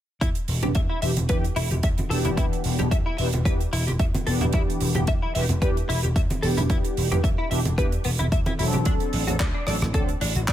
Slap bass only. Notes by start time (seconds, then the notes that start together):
0.21 E2
0.48 E1
0.63 E1
0.76 E2
1.02 E1
1.17 E1
1.29 E2
1.56 E1
1.70 E1
1.83 E2
2.10 E1
2.25 E1
2.37 E2
2.65 E1
2.79 E1
2.92 E2
3.19 E1
3.34 E1
3.45 E2
3.73 E1
3.88 E1
4.00 E2
4.27 E1
4.42 E1
4.54 E2
4.81 E1
4.96 E1
5.08 E2
5.36 E1
5.50 E1
5.62 E2
5.89 E1
6.04 E1
6.16 E2
6.43 E1
6.58 E1
6.70 E2
6.97 E1
7.12 E1
7.24 E2
7.51 E1
7.66 E1
7.78 E2
8.05 E1
8.20 E1
8.32 E2
8.60 E1
8.74 E1
8.86 D2
9.13 A1
9.28 A1
9.40 D2
9.67 A1
9.82 A1
9.94 D2
10.21 A1
10.36 A1
10.48 D2